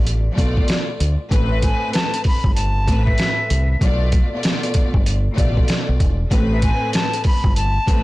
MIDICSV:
0, 0, Header, 1, 5, 480
1, 0, Start_track
1, 0, Key_signature, 0, "minor"
1, 0, Tempo, 625000
1, 1009, Time_signature, 4, 2, 24, 8
1, 6169, End_track
2, 0, Start_track
2, 0, Title_t, "Flute"
2, 0, Program_c, 0, 73
2, 1158, Note_on_c, 0, 76, 67
2, 1239, Note_off_c, 0, 76, 0
2, 1250, Note_on_c, 0, 80, 86
2, 1466, Note_off_c, 0, 80, 0
2, 1486, Note_on_c, 0, 81, 92
2, 1703, Note_off_c, 0, 81, 0
2, 1744, Note_on_c, 0, 83, 78
2, 1948, Note_off_c, 0, 83, 0
2, 1953, Note_on_c, 0, 81, 89
2, 2328, Note_off_c, 0, 81, 0
2, 2346, Note_on_c, 0, 76, 89
2, 2891, Note_off_c, 0, 76, 0
2, 5011, Note_on_c, 0, 76, 69
2, 5084, Note_off_c, 0, 76, 0
2, 5089, Note_on_c, 0, 80, 99
2, 5305, Note_off_c, 0, 80, 0
2, 5331, Note_on_c, 0, 81, 97
2, 5546, Note_off_c, 0, 81, 0
2, 5580, Note_on_c, 0, 83, 79
2, 5791, Note_off_c, 0, 83, 0
2, 5807, Note_on_c, 0, 81, 94
2, 6169, Note_off_c, 0, 81, 0
2, 6169, End_track
3, 0, Start_track
3, 0, Title_t, "String section"
3, 0, Program_c, 1, 48
3, 0, Note_on_c, 1, 47, 106
3, 0, Note_on_c, 1, 57, 90
3, 0, Note_on_c, 1, 65, 92
3, 0, Note_on_c, 1, 74, 110
3, 128, Note_off_c, 1, 47, 0
3, 131, Note_off_c, 1, 57, 0
3, 134, Note_off_c, 1, 65, 0
3, 137, Note_off_c, 1, 74, 0
3, 258, Note_on_c, 1, 47, 105
3, 264, Note_on_c, 1, 57, 101
3, 270, Note_on_c, 1, 65, 95
3, 275, Note_on_c, 1, 74, 110
3, 844, Note_off_c, 1, 47, 0
3, 847, Note_off_c, 1, 57, 0
3, 850, Note_off_c, 1, 65, 0
3, 853, Note_off_c, 1, 74, 0
3, 1000, Note_on_c, 1, 45, 114
3, 1006, Note_on_c, 1, 57, 106
3, 1012, Note_on_c, 1, 60, 102
3, 1017, Note_on_c, 1, 71, 124
3, 2007, Note_off_c, 1, 45, 0
3, 2010, Note_off_c, 1, 57, 0
3, 2013, Note_off_c, 1, 60, 0
3, 2015, Note_off_c, 1, 71, 0
3, 2205, Note_on_c, 1, 45, 113
3, 2211, Note_on_c, 1, 57, 94
3, 2216, Note_on_c, 1, 60, 91
3, 2222, Note_on_c, 1, 71, 118
3, 2777, Note_off_c, 1, 45, 0
3, 2780, Note_off_c, 1, 57, 0
3, 2783, Note_off_c, 1, 60, 0
3, 2786, Note_off_c, 1, 71, 0
3, 2924, Note_on_c, 1, 47, 105
3, 2930, Note_on_c, 1, 57, 91
3, 2936, Note_on_c, 1, 65, 92
3, 2941, Note_on_c, 1, 74, 113
3, 3281, Note_off_c, 1, 47, 0
3, 3284, Note_off_c, 1, 57, 0
3, 3287, Note_off_c, 1, 65, 0
3, 3290, Note_off_c, 1, 74, 0
3, 3321, Note_on_c, 1, 47, 111
3, 3327, Note_on_c, 1, 57, 90
3, 3333, Note_on_c, 1, 65, 91
3, 3339, Note_on_c, 1, 74, 114
3, 3968, Note_off_c, 1, 47, 0
3, 3971, Note_off_c, 1, 57, 0
3, 3974, Note_off_c, 1, 65, 0
3, 3977, Note_off_c, 1, 74, 0
3, 4099, Note_on_c, 1, 47, 108
3, 4105, Note_on_c, 1, 57, 101
3, 4110, Note_on_c, 1, 65, 89
3, 4116, Note_on_c, 1, 74, 110
3, 4684, Note_off_c, 1, 47, 0
3, 4687, Note_off_c, 1, 57, 0
3, 4690, Note_off_c, 1, 65, 0
3, 4693, Note_off_c, 1, 74, 0
3, 4841, Note_on_c, 1, 45, 115
3, 4847, Note_on_c, 1, 57, 105
3, 4853, Note_on_c, 1, 60, 102
3, 4859, Note_on_c, 1, 71, 120
3, 5847, Note_off_c, 1, 45, 0
3, 5850, Note_off_c, 1, 57, 0
3, 5853, Note_off_c, 1, 60, 0
3, 5856, Note_off_c, 1, 71, 0
3, 6045, Note_on_c, 1, 45, 112
3, 6051, Note_on_c, 1, 57, 99
3, 6058, Note_on_c, 1, 60, 95
3, 6063, Note_on_c, 1, 71, 113
3, 6169, Note_off_c, 1, 45, 0
3, 6169, Note_off_c, 1, 57, 0
3, 6169, Note_off_c, 1, 60, 0
3, 6169, Note_off_c, 1, 71, 0
3, 6169, End_track
4, 0, Start_track
4, 0, Title_t, "Fingered electric bass"
4, 0, Program_c, 2, 33
4, 0, Note_on_c, 2, 33, 89
4, 213, Note_off_c, 2, 33, 0
4, 291, Note_on_c, 2, 35, 88
4, 476, Note_off_c, 2, 35, 0
4, 772, Note_on_c, 2, 38, 97
4, 888, Note_off_c, 2, 38, 0
4, 1009, Note_on_c, 2, 33, 108
4, 1312, Note_off_c, 2, 33, 0
4, 1876, Note_on_c, 2, 31, 95
4, 2211, Note_off_c, 2, 31, 0
4, 2211, Note_on_c, 2, 33, 94
4, 2396, Note_off_c, 2, 33, 0
4, 2691, Note_on_c, 2, 36, 96
4, 2876, Note_off_c, 2, 36, 0
4, 2930, Note_on_c, 2, 35, 106
4, 3232, Note_off_c, 2, 35, 0
4, 3796, Note_on_c, 2, 31, 94
4, 4053, Note_off_c, 2, 31, 0
4, 4131, Note_on_c, 2, 33, 92
4, 4316, Note_off_c, 2, 33, 0
4, 4522, Note_on_c, 2, 35, 88
4, 4590, Note_off_c, 2, 35, 0
4, 4849, Note_on_c, 2, 33, 108
4, 5152, Note_off_c, 2, 33, 0
4, 5715, Note_on_c, 2, 31, 89
4, 5972, Note_off_c, 2, 31, 0
4, 6050, Note_on_c, 2, 33, 87
4, 6169, Note_off_c, 2, 33, 0
4, 6169, End_track
5, 0, Start_track
5, 0, Title_t, "Drums"
5, 50, Note_on_c, 9, 42, 93
5, 127, Note_off_c, 9, 42, 0
5, 289, Note_on_c, 9, 36, 102
5, 294, Note_on_c, 9, 42, 80
5, 366, Note_off_c, 9, 36, 0
5, 371, Note_off_c, 9, 42, 0
5, 440, Note_on_c, 9, 36, 96
5, 517, Note_off_c, 9, 36, 0
5, 522, Note_on_c, 9, 42, 92
5, 536, Note_on_c, 9, 38, 111
5, 599, Note_off_c, 9, 42, 0
5, 613, Note_off_c, 9, 38, 0
5, 772, Note_on_c, 9, 42, 73
5, 848, Note_off_c, 9, 42, 0
5, 1008, Note_on_c, 9, 36, 119
5, 1012, Note_on_c, 9, 42, 95
5, 1085, Note_off_c, 9, 36, 0
5, 1089, Note_off_c, 9, 42, 0
5, 1247, Note_on_c, 9, 42, 78
5, 1251, Note_on_c, 9, 36, 89
5, 1324, Note_off_c, 9, 42, 0
5, 1328, Note_off_c, 9, 36, 0
5, 1485, Note_on_c, 9, 42, 81
5, 1500, Note_on_c, 9, 38, 110
5, 1562, Note_off_c, 9, 42, 0
5, 1577, Note_off_c, 9, 38, 0
5, 1641, Note_on_c, 9, 42, 61
5, 1718, Note_off_c, 9, 42, 0
5, 1721, Note_on_c, 9, 46, 54
5, 1728, Note_on_c, 9, 36, 96
5, 1798, Note_off_c, 9, 46, 0
5, 1805, Note_off_c, 9, 36, 0
5, 1874, Note_on_c, 9, 36, 103
5, 1951, Note_off_c, 9, 36, 0
5, 1970, Note_on_c, 9, 42, 96
5, 2047, Note_off_c, 9, 42, 0
5, 2209, Note_on_c, 9, 36, 95
5, 2213, Note_on_c, 9, 42, 80
5, 2286, Note_off_c, 9, 36, 0
5, 2290, Note_off_c, 9, 42, 0
5, 2360, Note_on_c, 9, 36, 92
5, 2436, Note_off_c, 9, 36, 0
5, 2440, Note_on_c, 9, 42, 96
5, 2454, Note_on_c, 9, 38, 111
5, 2517, Note_off_c, 9, 42, 0
5, 2531, Note_off_c, 9, 38, 0
5, 2690, Note_on_c, 9, 42, 73
5, 2766, Note_off_c, 9, 42, 0
5, 2927, Note_on_c, 9, 36, 120
5, 2930, Note_on_c, 9, 42, 96
5, 3004, Note_off_c, 9, 36, 0
5, 3007, Note_off_c, 9, 42, 0
5, 3165, Note_on_c, 9, 42, 77
5, 3171, Note_on_c, 9, 36, 92
5, 3242, Note_off_c, 9, 42, 0
5, 3247, Note_off_c, 9, 36, 0
5, 3404, Note_on_c, 9, 42, 84
5, 3419, Note_on_c, 9, 38, 114
5, 3481, Note_off_c, 9, 42, 0
5, 3496, Note_off_c, 9, 38, 0
5, 3559, Note_on_c, 9, 42, 61
5, 3636, Note_off_c, 9, 42, 0
5, 3640, Note_on_c, 9, 42, 74
5, 3647, Note_on_c, 9, 36, 95
5, 3717, Note_off_c, 9, 42, 0
5, 3724, Note_off_c, 9, 36, 0
5, 3794, Note_on_c, 9, 36, 103
5, 3871, Note_off_c, 9, 36, 0
5, 3888, Note_on_c, 9, 42, 94
5, 3965, Note_off_c, 9, 42, 0
5, 4129, Note_on_c, 9, 36, 101
5, 4132, Note_on_c, 9, 42, 82
5, 4206, Note_off_c, 9, 36, 0
5, 4209, Note_off_c, 9, 42, 0
5, 4280, Note_on_c, 9, 36, 94
5, 4356, Note_off_c, 9, 36, 0
5, 4361, Note_on_c, 9, 42, 98
5, 4376, Note_on_c, 9, 38, 108
5, 4438, Note_off_c, 9, 42, 0
5, 4452, Note_off_c, 9, 38, 0
5, 4609, Note_on_c, 9, 36, 100
5, 4610, Note_on_c, 9, 42, 74
5, 4686, Note_off_c, 9, 36, 0
5, 4687, Note_off_c, 9, 42, 0
5, 4847, Note_on_c, 9, 36, 118
5, 4851, Note_on_c, 9, 42, 97
5, 4924, Note_off_c, 9, 36, 0
5, 4927, Note_off_c, 9, 42, 0
5, 5085, Note_on_c, 9, 42, 78
5, 5090, Note_on_c, 9, 36, 91
5, 5162, Note_off_c, 9, 42, 0
5, 5167, Note_off_c, 9, 36, 0
5, 5324, Note_on_c, 9, 42, 84
5, 5339, Note_on_c, 9, 38, 111
5, 5401, Note_off_c, 9, 42, 0
5, 5416, Note_off_c, 9, 38, 0
5, 5479, Note_on_c, 9, 42, 59
5, 5556, Note_off_c, 9, 42, 0
5, 5558, Note_on_c, 9, 46, 54
5, 5567, Note_on_c, 9, 36, 96
5, 5635, Note_off_c, 9, 46, 0
5, 5644, Note_off_c, 9, 36, 0
5, 5713, Note_on_c, 9, 36, 99
5, 5790, Note_off_c, 9, 36, 0
5, 5808, Note_on_c, 9, 42, 95
5, 5885, Note_off_c, 9, 42, 0
5, 6048, Note_on_c, 9, 36, 99
5, 6052, Note_on_c, 9, 42, 78
5, 6125, Note_off_c, 9, 36, 0
5, 6129, Note_off_c, 9, 42, 0
5, 6169, End_track
0, 0, End_of_file